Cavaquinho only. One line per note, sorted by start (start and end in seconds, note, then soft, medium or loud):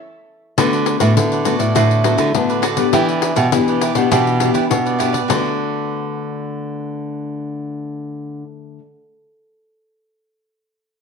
0.58 0.71 F#4 medium
0.58 0.71 A4 medium
0.58 0.72 B4 medium
0.58 0.72 D5 medium
0.73 0.99 A4 soft
0.73 1.00 B4 soft
0.73 1.00 D5 soft
1.00 1.10 F#4 medium
1.00 1.10 A4 medium
1.00 1.11 B4 medium
1.00 1.11 D5 medium
1.32 1.44 A4 soft
1.32 1.45 B4 soft
1.32 1.45 D5 soft
1.45 1.59 F#4 medium
1.45 1.59 A4 medium
1.45 1.58 B4 medium
1.45 1.58 D5 medium
1.59 1.74 A4 soft
1.59 1.74 B4 soft
1.59 1.73 D5 medium
1.75 2.03 F#4 medium
1.75 2.04 A4 medium
1.75 2.04 B4 medium
1.75 2.04 D5 medium
2.04 2.16 F#4 soft
2.04 2.17 A4 soft
2.04 2.17 B4 soft
2.04 2.17 D5 medium
2.17 2.28 F#4 medium
2.17 2.28 A4 medium
2.17 2.28 B4 medium
2.17 2.28 D5 medium
2.49 2.62 A4 soft
2.49 2.62 B4 soft
2.49 2.63 D5 medium
2.62 2.77 F#4 medium
2.62 2.77 A4 medium
2.62 2.76 B4 medium
2.62 2.75 D5 medium
2.77 2.92 A4 soft
2.77 2.92 B4 soft
2.77 2.91 D5 soft
2.93 3.07 E4 medium
2.93 3.07 G4 medium
2.93 3.07 B4 medium
2.93 3.08 D5 medium
3.09 3.35 G4 soft
3.09 3.36 B4 soft
3.09 3.36 D5 soft
3.36 3.46 E4 medium
3.36 3.46 G4 medium
3.36 3.46 B4 medium
3.36 3.46 D5 medium
3.68 3.81 G4 soft
3.68 3.81 B4 soft
3.68 3.81 D5 soft
3.81 3.95 E4 medium
3.81 3.96 G4 medium
3.81 3.95 B4 medium
3.81 3.93 D5 medium
3.95 4.10 G4 soft
3.95 4.10 B4 soft
3.95 4.09 D5 soft
4.11 4.39 E4 medium
4.11 4.40 G4 medium
4.11 4.40 B4 medium
4.11 4.40 D5 medium
4.40 4.53 E4 soft
4.40 4.53 G4 soft
4.40 4.54 B4 soft
4.40 4.54 D5 medium
4.54 4.64 E4 medium
4.54 4.64 G4 medium
4.54 4.64 B4 medium
4.54 4.65 D5 medium
4.86 4.98 G4 soft
4.86 4.98 B4 soft
4.86 4.99 D5 soft
4.98 5.13 E4 medium
4.98 5.13 G4 medium
4.98 5.13 B4 medium
4.98 5.11 D5 medium
5.13 5.28 G4 soft
5.13 5.28 B4 soft
5.13 5.27 D5 medium
5.28 8.78 F#4 medium
5.28 8.79 A4 medium
5.28 8.80 B4 medium
5.28 8.81 D5 medium